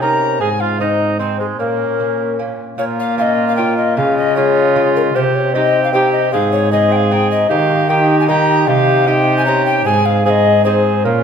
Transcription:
0.00 0.36 C3 medium
0.00 0.42 C3 medium
0.00 0.37 C4 soft
0.00 0.41 C#4 medium
0.00 0.37 D#4 medium
0.00 0.40 A#4 medium
0.00 0.42 A#5 medium
0.39 1.59 G#2 medium
0.39 1.55 G#2 soft
0.39 0.79 C4 medium
0.39 0.50 G#4 medium
0.39 0.62 G#5 medium
0.60 0.80 F4 medium
0.60 0.79 F5 medium
0.79 1.15 G#3 soft
0.79 1.18 C4 medium
0.79 1.16 C4 soft
0.79 1.18 D#4 medium
0.79 1.16 D#4 soft
0.79 1.18 D#5 medium
1.19 1.55 G#3 soft
1.19 1.39 C4 medium
1.19 1.61 C4 medium
1.19 1.55 C4 soft
1.19 1.56 D#4 soft
1.19 1.39 C5 medium
1.39 1.58 G#3 medium
1.39 1.46 G#4 medium
1.59 2.57 A#2 medium
1.59 2.55 A#2 soft
1.59 2.37 A#3 medium
1.59 2.59 C#4 medium
1.59 2.38 A#4 medium
2.00 2.35 A#3 soft
2.00 2.36 C#4 soft
2.39 2.75 A#3 soft
2.39 2.75 C#4 soft
2.78 3.93 A#2 medium
2.78 3.99 A#2 medium
2.78 4.00 A#3 medium
2.78 3.93 F4 medium
2.78 2.85 C#5 loud
3.00 3.18 F5 loud
3.18 3.53 A#3 medium
3.18 3.54 C#4 medium
3.18 3.54 F4 medium
3.18 3.23 F5 loud
3.22 3.47 D#5 loud
3.48 3.56 F5 loud
3.56 3.93 A#3 medium
3.56 3.93 C#4 medium
3.56 3.94 F4 medium
3.56 3.76 G5 medium
3.77 3.96 D#5 medium
3.97 5.11 C#3 medium
3.97 5.14 C#3 medium
3.97 4.37 G#3 medium
3.97 4.36 F4 medium
3.97 4.16 F5 loud
4.17 4.36 D#5 loud
4.37 4.72 G#3 soft
4.37 5.17 G#3 medium
4.37 4.72 F4 medium
4.37 5.17 F4 medium
4.37 4.94 C#5 loud
4.76 5.11 G#3 medium
4.76 5.11 F4 medium
4.96 5.02 A#4 medium
5.15 6.35 C3 medium
5.15 6.29 C3 medium
5.15 5.53 C4 medium
5.15 5.54 G4 medium
5.15 5.36 C5 loud
5.35 5.55 C#5 loud
5.54 5.92 C4 medium
5.54 5.90 C4 medium
5.54 5.90 D#4 medium
5.54 5.93 G4 medium
5.54 5.91 G4 medium
5.54 5.83 D#5 loud
5.84 5.92 F5 loud
5.92 6.31 C4 medium
5.92 6.29 C4 medium
5.92 6.29 D#4 medium
5.92 6.32 G4 medium
5.92 6.30 G4 medium
5.92 6.11 G5 loud
6.12 6.31 D#5 medium
6.32 7.50 G#2 medium
6.32 7.47 G#2 medium
6.32 6.71 C4 medium
6.32 6.71 G#4 medium
6.32 6.51 F5 loud
6.52 6.71 C#5 loud
6.72 7.49 C4 medium
6.72 7.08 C4 medium
6.72 7.08 D#4 soft
6.72 7.49 G#4 medium
6.72 7.08 G#4 medium
6.72 6.94 D#5 loud
6.92 6.97 G5 medium
6.96 7.13 F5 loud
7.11 7.46 C4 medium
7.11 7.47 D#4 medium
7.11 7.47 G#4 medium
7.11 7.30 G5 loud
7.31 7.52 D#5 loud
7.49 8.70 D#3 medium
7.49 8.64 D#3 medium
7.49 7.86 D#4 medium
7.49 7.86 G4 medium
7.49 7.90 F5 loud
7.89 8.25 A#3 medium
7.89 8.28 D#4 medium
7.89 8.25 D#4 medium
7.89 8.28 G4 medium
7.89 8.25 G4 medium
7.89 8.19 G5 loud
8.20 8.27 G#5 loud
8.28 8.64 A#3 medium
8.28 8.67 D#4 medium
8.28 8.64 D#4 medium
8.28 8.68 G4 medium
8.28 8.64 G4 medium
8.28 8.69 A#5 loud
8.67 9.81 C3 medium
8.67 9.85 C3 medium
8.67 9.06 D#4 medium
8.67 9.06 G4 medium
8.67 9.09 F5 loud
9.07 9.43 C4 medium
9.07 9.47 D#4 medium
9.07 9.43 D#4 medium
9.07 9.88 G4 medium
9.07 9.43 G4 medium
9.07 9.37 G5 loud
9.37 9.45 G#5 loud
9.45 9.83 C4 medium
9.45 9.87 C#4 medium
9.45 9.83 D#4 medium
9.45 9.83 G4 medium
9.45 9.65 A#5 loud
9.66 9.85 G5 loud
9.85 11.06 G#2 medium
9.85 11.01 G#2 medium
9.85 10.25 C4 medium
9.85 10.25 G#4 medium
9.85 10.07 G#5 loud
10.06 10.25 F5 loud
10.25 10.64 C4 medium
10.25 10.61 C4 medium
10.25 10.62 D#4 medium
10.25 10.64 G#4 medium
10.25 10.62 G#4 medium
10.25 10.31 F5 loud
10.30 10.64 D#5 loud
10.65 11.07 C4 medium
10.65 11.02 C4 medium
10.65 11.01 D#4 medium
10.65 11.04 G#4 medium
10.65 11.02 G#4 medium
10.65 11.06 C5 medium
11.05 11.23 A#2 medium
11.05 11.23 C#4 medium
11.05 11.23 F4 medium
11.05 11.23 A#4 medium

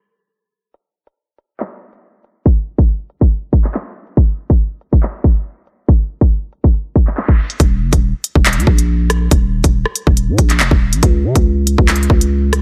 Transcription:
0.74 closed hi-hat medium
1.07 closed hi-hat medium
1.38 closed hi-hat medium
1.60 clap loud
1.60 closed hi-hat medium
1.93 closed hi-hat medium
2.24 closed hi-hat medium
2.46 kick loud
2.46 closed hi-hat medium
2.78 kick loud
2.78 closed hi-hat medium
3.10 closed hi-hat medium
3.21 kick medium
3.31 closed hi-hat medium
3.53 kick loud
3.53 closed hi-hat loud
3.64 clap medium
3.64 closed hi-hat medium
3.74 clap loud
4.07 closed hi-hat medium
4.17 kick loud
4.17 closed hi-hat medium
4.50 kick loud
4.50 closed hi-hat medium
4.81 closed hi-hat medium
4.93 kick medium
5.03 clap loud
5.03 closed hi-hat medium
5.24 kick loud
5.36 closed hi-hat medium
5.67 closed hi-hat medium
5.88 kick loud
5.88 closed hi-hat medium
6.21 kick loud
6.21 closed hi-hat medium
6.53 closed hi-hat medium
6.64 kick medium
6.74 closed hi-hat medium
6.96 kick loud
6.96 closed hi-hat loud
7.07 clap medium
7.07 closed hi-hat medium
7.17 clap loud
7.28 kick loud
7.50 closed hi-hat medium
7.60 7.83 D#1 loud
7.60 kick loud
7.60 closed hi-hat medium
7.81 7.92 F#1 loud
7.93 8.13 D#1 loud
7.93 kick loud
7.93 closed hi-hat medium
8.24 closed hi-hat medium
8.35 8.59 D#1 loud
8.35 kick medium
8.46 clap loud
8.46 closed hi-hat medium
8.53 closed hi-hat medium
8.57 8.67 D#2 loud
8.57 closed hi-hat soft
8.67 9.29 A#1 loud
8.67 kick medium
8.78 closed hi-hat medium
9.10 cross-stick loud
9.10 closed hi-hat medium
9.31 9.63 D#1 loud
9.31 kick loud
9.31 closed hi-hat medium
9.64 9.85 D#1 loud
9.64 kick loud
9.64 closed hi-hat medium
9.86 cross-stick medium
9.96 closed hi-hat medium
10.07 10.30 D#1 loud
10.07 kick medium
10.17 closed hi-hat medium
10.28 10.38 A#2 medium
10.38 10.61 A#1 loud
10.38 kick loud
10.38 closed hi-hat loud
10.50 clap medium
10.50 closed hi-hat medium
10.60 10.71 E1 loud
10.60 clap loud
10.71 10.94 D#1 loud
10.71 kick loud
10.93 11.02 A#1 loud
10.93 closed hi-hat medium
11.03 11.26 C#2 loud
11.03 kick loud
11.03 closed hi-hat medium
11.24 11.35 C#3 loud
11.35 11.77 C#2 loud
11.35 kick loud
11.35 closed hi-hat medium
11.67 closed hi-hat medium
11.78 12.09 C#2 loud
11.78 kick medium
11.88 clap loud
11.88 closed hi-hat medium
11.96 closed hi-hat medium
12.03 closed hi-hat soft
12.10 12.62 C#2 loud
12.10 kick loud
12.21 closed hi-hat medium
12.53 cross-stick loud
12.53 closed hi-hat medium

